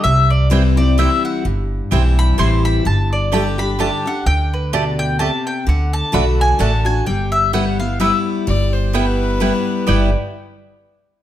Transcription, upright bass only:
X:1
M:3/4
L:1/8
Q:"Swing" 1/4=128
K:G
V:1 name="Upright bass" clef=bass
C,,6 | G,,,2 B,,,2 A,,,2 | G,,,6 | D,,6 |
D,,2 B,,,2 A,,,2 | G,,,6 | G,,,6 | G,,, z4 z |]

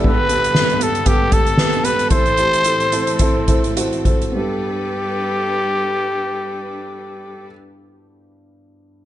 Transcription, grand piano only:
X:1
M:4/4
L:1/8
Q:"Swing 16ths" 1/4=101
K:G
V:1 name="Grand piano"
[B,GA] [B,GA] [B,GA] [B,GA] [B,GA] [B,GA] [B,GB] [B,GA] | [CEA] [CEG] [CEA] [CEA] [CEA] [CEA] [CEF] [CEA] | [B,GA]8- | [B,GA]8 |]
V:2 name="Grand piano" clef=bass
[G,,D,]8 | [A,,E,]8 | G,,8- | G,,8 |]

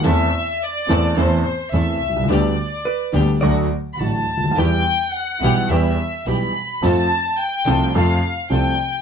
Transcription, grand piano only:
X:1
M:4/4
L:1/16
Q:1/4=106
K:Em
V:1 name="Grand piano" clef=bass
[E,,E,A,CA]2 z4 [E,,E,A,CA]2 [E,,E,A,CA]2 z2 [E,,E,A,CA]2 z/2 B,,,/2 C,,/2 ^C,,/2 | [D,,D,G,B,G]2 z4 [D,,D,G,B,G]2 [D,,D,F,A,F]2 z2 [A,,,A,,D,F,A,F]2 z/2 ^C,,/2 D,,/2 _E,,/2 | [E,,E,G,B,G]2 z4 [B,,,B,,E,G,B,G]2 [E,,E,G,B,G]2 z2 [B,,,B,,E,G,B,G]2 z2 | [=F,,=F,A,CA]2 z4 [C,,C,F,A,CA]2 [F,,F,A,CA]2 z2 [C,,C,F,A,CA]2 z2 |]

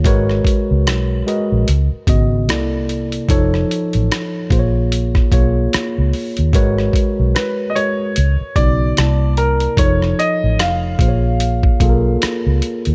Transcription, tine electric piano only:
X:1
M:4/4
L:1/8
Q:"Swing 16ths" 1/4=74
K:A#phr
V:1 name="Tine electric piano"
[G,FABc]3 [G,FABd] z [C,B,Fd] [=C,_B,=E=A=d]2 | [=F,_E=A_d]3 [^A,^EG^Bc]2 [A,EGc]3 | [G,FABc]3 [G,FABc] z [C,B,DF] [=C,_B,=E=d=a]2 | [=F,_E=A^A_d]3 [A,^EG^Bc]2 [A,EG=A^A]3 |]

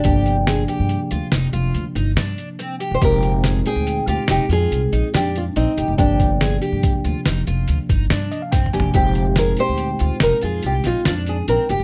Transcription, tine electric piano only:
X:1
M:7/4
L:1/16
Q:1/4=142
K:Fdor
V:1 name="Tine electric piano"
z24 z4 | z24 z4 | z16 z6 e f g2 a2 | z24 z4 |]
V:2 name="Tine electric piano"
[C,F,B,D]24- [C,F,B,D]4 | [B,,A,CE]24- [B,,A,CE]4 | [C,F,B,D]24- [C,F,B,D]2 [C,F,B,D]2 | [B,,A,CE]24- [B,,A,CE]4 |]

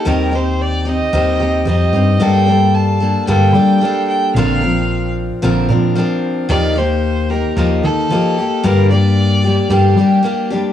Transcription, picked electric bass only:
X:1
M:4/4
L:1/8
Q:1/4=112
K:Gm
V:1 name="Picked electric bass" clef=bass
E,,4 E,, E,, F,, G,, | G,,4 G,, G, z2 | B,,,4 B,,, B,, z2 | E,,4 E,, E, z2 |
G,,4 G,, G, z2 |]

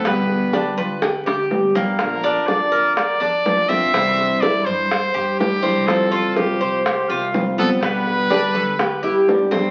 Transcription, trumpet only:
X:1
M:4/4
L:1/8
Q:1/4=124
K:Gmix
V:1 name="Trumpet"
B3 z4 z | _B2 d2 d3 e- | e2 d c3 G2 | A2 G2 G2 z A |
B6 z2 |]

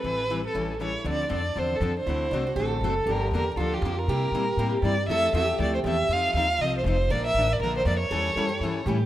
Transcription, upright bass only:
X:1
M:4/4
L:1/8
Q:"Swing" 1/4=238
K:Am
V:1 name="Upright bass" clef=bass
A,,,4 A,,,4 | [K:Dm] D,,2 F,,2 E,,2 F,,2 | D,,2 C,,2 A,,,2 ^F,,,2 | G,,,2 E,,2 D,,2 F,,2 |
C,2 B,,2 A,,2 G,,2 | F,,2 E,,2 D,,2 E,,2 | F,,2 _E,,2 C,,2 F,,,2 | B,,,2 A,,,2 B,,,2 F,,2 |
E,,2 ^F,,2 G,,2 A,,2 |]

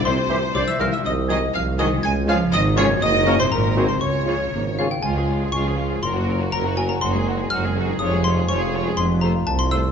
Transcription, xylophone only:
X:1
M:2/4
L:1/16
Q:1/4=122
K:Cmix
V:1 name="Xylophone"
c'4 d' e' f' e' | [K:Db] e'2 e'2 f'2 e'2 | a'2 f'2 e'2 d'2 | e'3 c' b3 c' |
d'6 f =g | a4 d'4 | c'4 b2 a b | c'4 f'4 |
e'2 c'2 d'2 z2 | [K:F] c'2 b2 a c' e'2 |]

